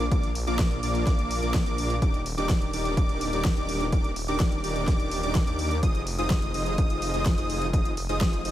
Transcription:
0.11 A#1 A#3 D4 F4 A#4 D5 D6, kick, closed hi-hat
0.23 closed hi-hat
0.35 open hi-hat
0.47 A#1 A#3 D4 F4 A#4 D5 D6, closed hi-hat
0.59 kick, snare, closed hi-hat
0.71 closed hi-hat
0.83 A#1 A#3 D4 F4 A#4 D5 D6, open hi-hat
0.95 closed hi-hat
1.07 A#1 A#3 D4 F4 A#4 D5 D6, kick, snare, closed hi-hat
1.19 closed hi-hat
1.31 open hi-hat
1.42 A#1 A#3 D4 F4 A#4 D5 D6, closed hi-hat
1.54 kick, snare, closed hi-hat
1.66 A#1 A#3 D4 F4 A#4 D5 D6, closed hi-hat
1.78 open hi-hat
1.90 closed hi-hat
2.02 D#1 D4 D#4 G4 A#4 D5 D6, kick, closed hi-hat
2.14 closed hi-hat
2.26 open hi-hat
2.38 D#1 D4 D#4 G4 A#4 D5 D6, closed hi-hat
2.49 kick, snare, closed hi-hat
2.62 closed hi-hat
2.73 D#1 D4 D#4 G4 A#4 D5 D6, open hi-hat
2.85 closed hi-hat
2.97 D#1 D4 D#4 G4 A#4 D5 D6, kick, closed hi-hat
3.09 closed hi-hat
3.21 open hi-hat
3.33 D#1 D4 D#4 G4 A#4 D5 D6, closed hi-hat
3.45 kick, snare, closed hi-hat
3.57 D#1 D4 D#4 G4 A#4 D5 D6, closed hi-hat
3.69 open hi-hat
3.81 closed hi-hat
3.92 D#1 D4 D#4 G4 A#4 D5 D6, kick, closed hi-hat
4.04 closed hi-hat
4.16 open hi-hat
4.28 D#1 D4 D#4 G4 A#4 D5 D6, closed hi-hat
4.40 kick, snare, closed hi-hat
4.52 closed hi-hat
4.64 D#1 D4 D#4 G4 A#4 D5 D6, open hi-hat
4.76 closed hi-hat
4.87 D#1 D4 D#4 G4 A#4 D5 D6, kick, snare, closed hi-hat
5.00 closed hi-hat
5.11 open hi-hat
5.23 D#1 D4 D#4 G4 A#4 D5 D6, closed hi-hat
5.35 kick, snare, closed hi-hat
5.47 D#2 D4 D#4 G4 A#4 D5 D6, closed hi-hat
5.59 open hi-hat
5.71 closed hi-hat
5.83 F1 D#4 F4 G#4 C5 D#5 D#6, kick, closed hi-hat
5.95 closed hi-hat
6.07 open hi-hat
6.19 F1 D#4 F4 G#4 C5 D#5 D#6, closed hi-hat
6.30 kick, snare, closed hi-hat
6.42 closed hi-hat
6.54 F1 D#4 F4 G#4 C5 D#5 D#6, open hi-hat
6.66 closed hi-hat
6.78 F1 D#4 F4 G#4 C5 D#5 D#6, kick, closed hi-hat
6.90 closed hi-hat
7.02 open hi-hat
7.14 F1 D#4 F4 G#4 C5 D#5 D#6, closed hi-hat
7.26 kick, snare, closed hi-hat
7.38 F1 D#4 F4 G#4 C5 D#5 D#6, closed hi-hat
7.50 open hi-hat
7.62 closed hi-hat
7.73 F1 D#4 F4 G#4 C5 D#5 D#6, kick, closed hi-hat
7.85 closed hi-hat
7.97 open hi-hat
8.09 F1 D#4 F4 G#4 C5 D#5 D#6, closed hi-hat
8.21 kick, snare, closed hi-hat
8.33 closed hi-hat
8.45 F1 D#4 F4 G#4 C5 D#5 D#6, open hi-hat

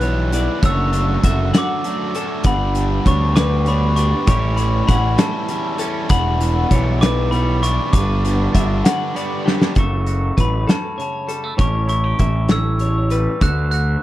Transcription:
Already playing: B1 E2 E3 G3 D4 F#4 F#6
0.01 E3 G3 B3 E4 C#5, closed hi-hat
0.32 E2 E3 G3 B3 E4 D5, closed hi-hat
0.62 F#1 F#2 D3 F#3 A3 D4 F#4 C#5 E6, kick, closed hi-hat
0.92 F#3 A3 D4 F#4, closed hi-hat
1.22 F#1 D3 F#3 A3 D4 F#4 E5, kick, closed hi-hat
1.53 F#3 A3 D4 F#4 F#5, snare, closed hi-hat
1.58 D6
1.84 F#2 F#3 A3 D4 F#4 D5, closed hi-hat
2.15 F#3 A3 C#4 D4 F#4 A4, closed hi-hat
2.44 G1 G2 G3 B3 D4 G4 F#5 B5, kick, closed hi-hat
2.75 G3 B3 D4 G4, closed hi-hat
3.05 D2 D3 G3 B3 D4 G4 C#5 C#6, kick, closed hi-hat
3.36 G3 B3 D4 G4 B4 D6, snare, closed hi-hat
3.66 G2 G3 B3 D4 G4 C#5 B5, closed hi-hat
3.96 G3 B3 D4 G4 D5 C#6, closed hi-hat
4.26 A1 A2 E3 G3 C#4 G4 C#5 C#6, kick, closed hi-hat
4.30 C#4 E4
4.57 E3 G3 C#4 E4 B5, closed hi-hat
4.87 A1 E3 G3 C#4 E4 F#5 B5, kick, closed hi-hat
5.18 E3 G3 C#4 E4 G5 A5, snare, closed hi-hat
5.49 E2 E3 G3 C#4 E4 E5, closed hi-hat
5.78 E3 G3 C#4 E4 A4, closed hi-hat
6.09 E1 E2 E3 G3 B3 E4 F#5 B5, kick, closed hi-hat
6.41 E3 G3 B3 E4, closed hi-hat
6.70 B1 E3 G3 B3 D4 E4 C#5, kick, closed hi-hat
7.01 E3 G3 B3 E4 B4 D6, snare, closed hi-hat
7.31 B2 E3 G3 B3 E4 C#5 B5, closed hi-hat
7.62 E3 G3 B3 D4 E4 D5 C#6, closed hi-hat
7.91 G1 G2 D3 G3 B3 D4 B4 D6, kick, closed hi-hat
8.24 D3 G3 B3 D4, closed hi-hat
8.52 G1 D3 G3 B3 D4 E5, kick, closed hi-hat
8.85 D3 G3 B3 D4 F#5, snare, closed hi-hat
9.14 G2 D3 G3 B3 D4 D5, closed hi-hat
9.45 D3 G3 B3 D4 G4, snare
9.62 snare
9.75 F#1 F#2 F#3 A3 C#4 F#4 A4 C#6, kick, closed hi-hat
10.06 F#4, closed hi-hat
10.36 A1 F#3 B4, kick, closed hi-hat
10.40 B5
10.67 C#4 A4 A5, snare, closed hi-hat
10.98 C#3 C#5 A5, closed hi-hat
11.28 G3 A4, closed hi-hat
11.44 A3
11.57 A1 A2 E3 G3 C#4 G4 C#5, kick, closed hi-hat
11.61 C#6
11.87 E4 C#6, closed hi-hat
12.04 G4
12.19 A1 E3 E5, kick, closed hi-hat
12.49 C#4 A4 E6, snare, closed hi-hat
12.79 E2 C#5, closed hi-hat
13.10 G3 B4, closed hi-hat
13.41 D2 D3 F#4 A4 F#6, kick, closed hi-hat
13.71 F#4 F#6, closed hi-hat

